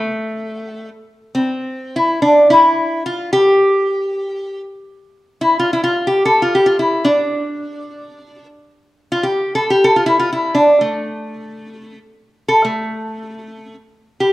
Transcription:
0.00 0.89 A3 medium
1.35 1.97 C4 medium
1.96 2.21 E4 medium
2.22 2.50 D4 medium
2.50 3.05 E4 medium
3.06 3.32 F4 medium
3.33 4.61 G4 loud
5.41 5.59 E4 medium
5.59 5.73 F4 medium
5.73 5.83 E4 medium
5.84 6.08 F4 medium
6.07 6.25 G4 medium
6.25 6.42 A4 medium
6.42 6.55 F4 medium
6.55 6.66 G4 medium
6.66 6.79 F4 medium
6.79 7.06 E4 medium
7.05 8.46 D4 medium
9.12 9.24 F4 medium
9.23 9.55 G4 medium
9.55 9.71 A4 medium
9.70 9.84 G4 medium
9.84 9.96 A4 medium
9.96 10.06 F4 medium
10.06 10.19 E4 medium
10.19 10.32 F4 medium
10.33 10.56 E4 medium
10.55 10.81 D4 medium
10.81 11.98 A3 medium
12.48 12.66 A4 medium
12.65 13.75 A3 medium
14.20 14.33 G4 medium

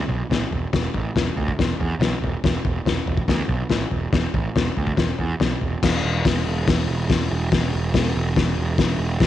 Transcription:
0.08 0.22 B1 medium
0.08 floor tom medium
0.30 0.44 A1 medium
0.30 snare medium
0.30 floor tom medium
0.51 0.65 E1 medium
0.51 floor tom medium
0.73 0.87 E1 loud
0.73 kick loud
0.73 snare loud
0.73 floor tom medium
0.94 1.08 A1 medium
0.94 kick medium
0.94 floor tom medium
1.16 1.29 E1 medium
1.16 snare loud
1.16 floor tom medium
1.36 1.50 D2 medium
1.36 floor tom medium
1.48 kick medium
1.59 1.73 E1 medium
1.59 kick medium
1.59 snare medium
1.59 floor tom medium
1.79 1.93 E2 medium
1.79 floor tom medium
1.99 2.13 B1 medium
1.99 snare loud
1.99 floor tom medium
2.20 2.35 E1 medium
2.20 floor tom medium
2.44 2.58 E1 medium
2.44 kick loud
2.44 snare loud
2.44 floor tom medium
2.65 2.79 E1 medium
2.65 kick medium
2.65 floor tom medium
2.85 2.99 E1 medium
2.85 snare loud
2.85 floor tom medium
3.06 3.20 E1 medium
3.06 floor tom medium
3.17 kick medium
3.28 3.42 D2 medium
3.28 kick medium
3.28 snare loud
3.28 floor tom medium
3.48 3.62 B1 medium
3.48 floor tom medium
3.69 3.84 A1 medium
3.69 snare loud
3.69 floor tom medium
3.91 4.06 E1 medium
3.91 floor tom medium
4.13 4.27 E1 medium
4.13 kick loud
4.13 snare loud
4.13 floor tom medium
4.34 4.48 A1 medium
4.34 kick medium
4.34 floor tom medium
4.56 4.69 E1 medium
4.56 snare loud
4.56 floor tom medium
4.77 4.91 D2 medium
4.77 floor tom medium
4.87 kick medium
4.97 5.11 E1 medium
4.97 kick medium
4.97 snare loud
4.97 floor tom medium
5.19 5.33 E2 medium
5.19 floor tom medium
5.40 5.54 B1 medium
5.40 snare loud
5.40 floor tom medium
5.61 5.75 E1 medium
5.61 floor tom medium
5.83 6.03 E1 medium
5.83 kick loud
5.83 snare loud
5.83 crash loud
6.03 6.23 E1 medium
6.25 6.45 E1 medium
6.25 kick loud
6.25 snare loud
6.25 open hi-hat medium
6.47 6.66 E1 medium
6.67 6.87 E1 medium
6.67 kick loud
6.67 snare loud
6.67 open hi-hat medium
6.89 7.08 E1 medium
7.09 7.29 E1 medium
7.09 kick loud
7.09 snare medium
7.09 open hi-hat medium
7.31 7.51 E1 medium
7.52 7.72 E1 medium
7.52 kick loud
7.52 snare loud
7.52 open hi-hat medium
7.74 7.93 E1 medium
7.94 8.14 E1 medium
7.94 kick loud
7.94 snare loud
7.94 open hi-hat medium
8.15 8.35 E1 loud
8.36 8.56 E1 medium
8.36 kick loud
8.36 snare loud
8.36 open hi-hat medium
8.57 8.77 E1 medium
8.78 8.97 E1 medium
8.78 kick loud
8.78 snare loud
8.78 open hi-hat medium
8.98 9.19 E1 medium
9.20 9.27 E1 loud
9.20 kick loud
9.20 snare loud
9.20 open hi-hat medium

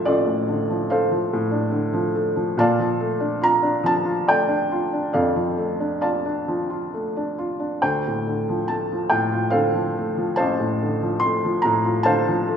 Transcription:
0.00 0.25 A2 medium
0.00 0.47 D3 soft
0.00 0.70 F3 soft
0.00 0.90 A3 soft
0.00 0.67 D4 soft
0.00 0.07 A4 medium
0.00 0.46 C5 medium
0.00 2.61 E5 medium
0.00 0.90 F5 medium
0.00 2.60 G5 medium
0.05 2.54 A1 medium
0.05 1.29 F4 soft
0.05 0.90 A4 medium
0.05 0.93 D5 medium
0.26 1.32 A2 soft
0.48 1.70 D3 soft
0.70 1.09 F3 soft
0.90 2.14 A3 medium
0.90 2.12 A4 medium
0.90 2.12 C5 medium
0.90 2.11 F5 medium
1.11 1.92 F3 soft
1.33 2.55 A2 medium
1.51 2.54 D4 soft
1.72 2.55 D3 medium
1.93 2.35 F3 medium
2.15 2.57 A3 medium
2.36 2.57 F3 medium
2.57 5.09 A#2 medium
2.57 3.82 D5 medium
2.57 3.82 F5 medium
2.57 3.40 A5 medium
2.79 3.82 F3 medium
3.00 4.26 A3 medium
3.20 3.61 D4 medium
3.42 4.04 F4 medium
3.42 3.87 A#5 loud
3.62 4.47 D4 medium
3.84 5.34 F3 medium
3.84 4.30 A5 medium
4.05 4.70 F4 medium
4.27 5.56 A3 medium
4.27 5.12 D5 medium
4.27 5.17 G5 medium
4.48 4.92 D4 medium
4.72 6.01 F4 medium
4.93 5.78 D4 soft
5.13 7.78 F2 medium
5.13 6.42 A4 soft
5.13 6.00 D5 soft
5.13 5.99 F5 medium
5.36 6.47 F3 soft
5.58 6.92 A3 soft
5.80 6.24 D4 soft
6.01 6.68 F4 medium
6.01 7.33 D5 soft
6.01 7.33 F5 soft
6.01 7.33 A5 medium
6.25 7.15 D4 soft
6.48 7.79 F3 medium
6.70 7.37 F4 soft
6.94 7.81 A3 soft
7.17 7.58 D4 soft
7.38 7.81 F4 soft
7.60 7.81 D4 soft
7.82 10.33 D2 medium
7.82 9.07 C5 soft
7.82 8.71 G5 medium
8.07 9.09 A2 soft
8.27 9.52 D3 soft
8.49 8.90 F3 soft
8.68 9.96 A3 soft
8.68 9.11 A5 medium
8.92 9.73 F3 soft
9.10 10.58 A2 medium
9.10 9.53 G5 medium
9.32 10.96 F4 soft
9.50 10.81 D3 medium
9.50 10.74 A4 medium
9.50 10.36 C5 medium
9.50 10.36 F5 medium
9.74 10.16 F3 soft
9.97 11.23 A3 soft
10.17 11.01 F3 medium
10.36 11.59 C5 medium
10.36 11.59 F5 medium
10.36 11.17 A5 medium
10.40 12.57 A1 medium
10.60 11.63 A2 soft
10.82 12.04 D3 medium
11.02 11.43 F3 medium
11.20 11.64 C6 medium
11.24 12.47 A3 medium
11.45 12.27 F3 medium
11.62 12.57 A2 medium
11.62 12.06 A#5 medium
11.85 12.57 F4 medium
12.03 12.57 D3 medium
12.03 12.57 C5 medium
12.03 12.57 F5 medium
12.03 12.57 A5 loud
12.28 12.57 F3 medium
12.48 12.57 A3 medium

